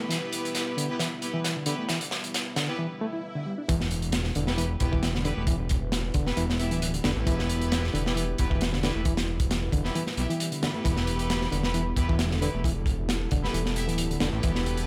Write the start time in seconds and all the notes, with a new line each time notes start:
Already playing: G3 B3 E4 B4
0.00 B3 E4 G4 B4
0.09 E3, snare, closed hi-hat
0.33 closed hi-hat
0.45 closed hi-hat
0.55 snare, closed hi-hat
0.77 D3, closed hi-hat
0.89 B3 E4 G4 B4
0.99 E3, snare, closed hi-hat
1.22 B3 E4 G4 B4, closed hi-hat
1.34 E3
1.44 snare, closed hi-hat
1.56 D3
1.66 D3 B3 E4 G4 B4, closed hi-hat
1.79 A3
1.89 E3, snare, closed hi-hat
2.01 closed hi-hat
2.11 snare
2.24 closed hi-hat
2.34 snare, closed hi-hat
2.56 D3, snare, closed hi-hat
2.68 B3 E4 G4 B4
2.79 E3, swell
3.01 A3
3.13 E4
3.35 D3
3.46 G3
3.58 D4
3.68 E1 E3 G3 B3 E4 B4, kick, closed hi-hat
3.81 snare
3.91 closed hi-hat
4.02 closed hi-hat
4.12 snare, closed hi-hat
4.24 snare
4.35 E1 D3, closed hi-hat
4.47 B3 E4 G4 B4, snare
4.58 E3, closed hi-hat
4.80 E1 B3 E4 G4 B4, kick, closed hi-hat
4.92 E3, kick
5.03 snare, closed hi-hat
5.15 D3, snare
5.25 D3 B3 E4 G4 B4, closed hi-hat
5.37 E1 A3
5.47 E3, kick, closed hi-hat
5.69 kick, closed hi-hat
5.92 snare, closed hi-hat
6.14 E1 D3, kick, closed hi-hat
6.26 B3 E4 G4 B4, snare
6.37 E1 E3, closed hi-hat
6.50 snare
6.59 B3 E4 G4 E5, closed hi-hat
6.71 D1 E3, closed hi-hat
6.82 closed hi-hat
6.94 D3, closed hi-hat
7.04 E1 D3 B3 E4 G4 B4, snare, closed hi-hat
7.16 A1 A3 B3 E4 G4 B4
7.27 E1 E3, kick, closed hi-hat
7.39 snare
7.50 closed hi-hat
7.62 closed hi-hat
7.72 snare, closed hi-hat
7.84 snare
7.94 E1 D3, closed hi-hat
8.06 B3 E4 G4 B4, snare
8.16 E3, closed hi-hat
8.38 E1 B3 E4 G4 B4, kick, closed hi-hat
8.50 E3, kick
8.61 snare, closed hi-hat
8.73 D3, snare
8.83 D3 B3 E4 G4 B4, snare, closed hi-hat
8.95 E1 A3
9.05 E3, kick, closed hi-hat
9.17 snare, closed hi-hat
9.40 kick, closed hi-hat
9.51 snare, closed hi-hat
9.72 E1 D3, kick, closed hi-hat
9.84 B3 E4 G4 B4, snare
9.95 E3, closed hi-hat
10.07 snare
10.17 B1 B3 E4 G4 E5, closed hi-hat
10.30 E3, closed hi-hat
10.40 closed hi-hat
10.52 D3, closed hi-hat
10.62 D3 B3 E4 G4 B4, snare, closed hi-hat
10.74 A3 B3 E4 G4 B4
10.85 E1 E3 A4, kick, closed hi-hat
10.97 snare
11.07 closed hi-hat
11.19 closed hi-hat
11.30 snare, closed hi-hat
11.41 snare
11.52 E1 D3, closed hi-hat
11.63 B3 E4 G4 B4, snare
11.74 E3, closed hi-hat
11.96 E1 B3 E4 G4 B4, kick, closed hi-hat
12.09 E3, kick
12.19 snare, closed hi-hat
12.31 D3, snare
12.41 D3 B3 E4 G4 B4, closed hi-hat
12.54 E1 A3
12.64 E3, kick, closed hi-hat
12.86 kick, closed hi-hat
13.09 snare, closed hi-hat
13.31 E1 D3, kick, closed hi-hat
13.43 B3 E4 G4 B4, snare
13.54 E1 E3, closed hi-hat
13.66 snare
13.76 B3 E4 G4 E5, closed hi-hat
13.88 D1 E3, closed hi-hat
13.98 closed hi-hat
14.11 D3, closed hi-hat
14.20 E1 D3 B3 E4 G4 B4, snare, closed hi-hat
14.33 A1 A3 B3 E4 G4 B4
14.43 E1 E3, kick, closed hi-hat
14.55 snare
14.66 closed hi-hat
14.77 closed hi-hat